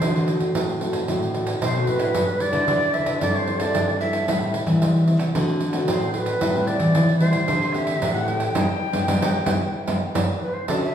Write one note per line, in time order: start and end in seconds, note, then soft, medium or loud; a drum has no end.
0.00 0.52 D3 medium
0.00 0.36 D3 medium
0.00 0.10 A3 medium
0.00 0.10 C4 medium
0.00 0.10 F#4 medium
0.00 0.29 C5 medium
0.00 pandeiro medium
0.15 0.51 A3 medium
0.15 0.51 C4 medium
0.15 0.51 F#4 medium
0.15 pandeiro soft
0.28 pandeiro medium
0.40 0.52 A2 medium
0.40 pandeiro medium
0.55 1.06 A2 medium
0.55 0.89 A2 medium
0.55 0.77 A3 medium
0.55 0.78 C4 medium
0.55 0.78 F#4 medium
0.55 pandeiro medium
0.69 pandeiro soft
0.81 0.97 A3 medium
0.81 0.97 C4 medium
0.81 0.97 F#4 medium
0.81 pandeiro medium
0.93 1.06 A2 medium
0.93 pandeiro medium
1.08 1.54 A2 medium
1.08 1.59 D3 medium
1.08 1.24 A3 medium
1.08 1.24 C4 soft
1.08 1.25 F#4 medium
1.08 pandeiro medium
1.22 pandeiro soft
1.34 1.60 A3 medium
1.34 1.60 C4 medium
1.34 1.60 F#4 medium
1.34 pandeiro medium
1.47 pandeiro medium
1.61 2.13 A2 medium
1.61 1.86 B2 medium
1.61 1.89 C5 medium
1.61 pandeiro medium
1.75 1.98 A3 medium
1.75 1.98 C4 medium
1.75 1.98 F#4 medium
1.75 pandeiro soft
1.87 2.12 A2 medium
1.87 2.42 B4 loud
1.87 pandeiro medium
1.99 2.24 D4 medium
1.99 2.24 E4 medium
1.99 2.24 B4 medium
1.99 pandeiro medium
2.14 2.49 G2 medium
2.14 2.66 G3 medium
2.14 pandeiro medium
2.28 pandeiro soft
2.40 2.95 D5 loud
2.40 pandeiro medium
2.53 2.65 D3 medium
2.53 2.90 D4 soft
2.53 2.90 E4 medium
2.53 2.90 B4 medium
2.53 pandeiro medium
2.68 3.02 D3 medium
2.68 3.19 D3 medium
2.68 pandeiro medium
2.82 pandeiro soft
2.94 3.17 D4 soft
2.94 3.17 E4 medium
2.94 3.17 B4 medium
2.94 3.20 E5 loud
2.94 pandeiro medium
3.06 3.19 D3 medium
3.06 pandeiro medium
3.21 3.67 G2 medium
3.21 3.72 G3 medium
3.21 3.57 C4 medium
3.21 3.58 E4 medium
3.21 3.58 A4 medium
3.21 3.36 D5 loud
3.21 pandeiro medium
3.35 3.61 C5 medium
3.35 3.39 C#5 medium
3.35 pandeiro soft
3.47 pandeiro medium
3.59 3.96 C4 medium
3.59 3.97 E4 medium
3.59 3.97 A4 medium
3.59 3.99 D5 loud
3.59 pandeiro medium
3.75 4.20 G2 medium
3.75 4.26 G3 medium
3.75 pandeiro medium
3.89 pandeiro soft
4.00 4.24 C4 medium
4.00 4.24 E4 medium
4.00 4.24 A4 medium
4.00 4.50 E5 medium
4.00 pandeiro medium
4.13 pandeiro medium
4.28 4.62 A2 loud
4.28 4.79 A2 medium
4.28 4.54 G3 medium
4.28 4.54 C4 medium
4.28 4.54 E4 medium
4.28 pandeiro medium
4.42 pandeiro soft
4.54 pandeiro medium
4.66 4.79 E3 medium
4.66 5.03 G3 medium
4.66 5.04 C4 medium
4.66 5.04 E4 medium
4.66 pandeiro medium
4.82 5.20 E3 medium
4.82 5.32 E3 medium
4.82 pandeiro medium
4.96 pandeiro soft
5.07 5.24 G3 soft
5.07 5.24 C4 medium
5.07 5.24 E4 medium
5.07 pandeiro medium
5.20 5.32 C3 medium
5.20 pandeiro medium
5.35 5.80 D3 loud
5.35 5.86 D3 medium
5.35 5.60 A3 medium
5.35 5.61 C4 medium
5.35 5.61 F#4 medium
5.35 pandeiro medium
5.49 pandeiro soft
5.60 pandeiro medium
5.73 6.10 A3 medium
5.73 6.10 C4 medium
5.73 6.11 F#4 medium
5.73 pandeiro medium
5.88 6.34 A2 loud
5.88 6.39 A2 medium
5.88 6.13 C5 medium
5.88 pandeiro medium
6.02 pandeiro soft
6.14 6.30 A3 medium
6.14 6.31 C4 medium
6.14 6.31 F#4 medium
6.14 6.68 B4 medium
6.14 6.19 C5 medium
6.14 pandeiro medium
6.26 pandeiro medium
6.41 6.92 A2 medium
6.41 6.76 A2 medium
6.41 6.51 G3 medium
6.41 6.51 C4 medium
6.41 6.51 E4 medium
6.41 pandeiro medium
6.55 6.91 G3 medium
6.55 6.91 C4 medium
6.55 6.91 E4 medium
6.55 pandeiro soft
6.67 7.19 D5 loud
6.67 pandeiro medium
6.80 6.92 E3 medium
6.80 pandeiro medium
6.95 7.46 E3 medium
6.95 7.34 E3 medium
6.95 7.11 G3 medium
6.95 7.11 C4 medium
6.95 7.11 E4 medium
6.95 pandeiro medium
7.09 pandeiro soft
7.20 7.44 G3 medium
7.20 7.44 C4 medium
7.20 7.44 E4 medium
7.20 7.75 C5 loud
7.20 pandeiro medium
7.33 7.46 A2 medium
7.33 pandeiro medium
7.48 7.94 D3 loud
7.48 7.99 D3 medium
7.48 7.64 A3 medium
7.48 7.64 C4 medium
7.48 7.65 G4 medium
7.48 pandeiro medium
7.62 pandeiro soft
7.73 8.10 A3 soft
7.73 8.11 C4 medium
7.73 8.11 G4 medium
7.73 8.16 E5 loud
7.73 7.77 F#5 medium
7.73 pandeiro medium
7.87 pandeiro medium
8.02 8.47 A2 loud
8.02 8.53 A2 medium
8.02 pandeiro medium
8.14 8.53 A3 medium
8.14 8.54 C4 medium
8.14 8.54 G4 medium
8.14 8.28 F#5 loud
8.14 pandeiro soft
8.27 10.14 G5 loud
8.27 pandeiro medium
8.40 pandeiro medium
8.55 8.65 G2 medium
8.55 8.64 G3 medium
8.55 8.64 B3 medium
8.55 8.64 D4 medium
8.55 pandeiro loud
8.93 9.04 G2 loud
8.93 9.02 G3 medium
8.93 9.03 B3 medium
8.93 9.03 D4 medium
8.93 pandeiro medium
9.08 9.18 G2 medium
9.08 9.17 G3 loud
9.08 9.17 B3 loud
9.08 9.17 D4 loud
9.08 pandeiro loud
9.22 9.32 G2 medium
9.22 9.30 G3 medium
9.22 9.31 B3 medium
9.22 9.30 D4 medium
9.22 pandeiro loud
9.46 9.57 G2 medium
9.46 9.56 G3 medium
9.46 9.56 B3 medium
9.46 9.56 D4 loud
9.46 pandeiro loud
9.87 9.98 G2 loud
9.87 9.96 G3 medium
9.87 9.96 B3 medium
9.87 9.96 D4 medium
9.87 pandeiro medium
10.15 10.25 G2 loud
10.15 10.23 G3 medium
10.15 10.24 B3 medium
10.15 10.23 D4 medium
10.15 pandeiro loud
10.42 10.55 B4 medium
10.54 10.68 C5 medium
10.68 10.91 D3 medium
10.68 10.95 D3 medium
10.68 10.84 C#4 medium
10.68 10.85 F#4 medium
10.68 10.85 A4 medium
10.68 10.74 D5 medium
10.68 pandeiro medium
10.82 10.95 E5 medium
10.82 pandeiro soft